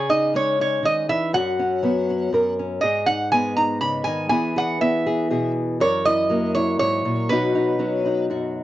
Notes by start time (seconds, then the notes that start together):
Already playing: C#3 G#4
0.09 D#4 D#5
0.34 G#3 C#4 C#5
0.60 D#4 C#5
0.83 D#3 D#5
1.09 E3 E5
1.33 F#2 F#4 F#5
1.59 C#4
1.83 F#3 B3
2.10 C#4
2.33 F#2 A#4
2.59 C#4
2.81 G#2 G#4 D#5
3.06 D#4 F#5
3.32 G#3 B3 G#5
3.57 D#4 A#5
3.81 C#3 B5
4.04 D#3 G#5
4.29 E3 B3 E4 G#4 G#5
4.56 G#4 F#5
4.81 B3 E4 E5
5.06 G#4
5.30 B2 G#4
5.80 F#2 A#4 C#5
6.05 E4 D#5
6.30 F#3 A#3
6.55 E4 C#5
6.79 G#2 C#5
7.05 A#2
7.29 B2 F#3 C#4 D#4 F#4 B4
7.55 D#4
7.79 F#3 C#4
8.06 D#4
8.30 F#2 F#4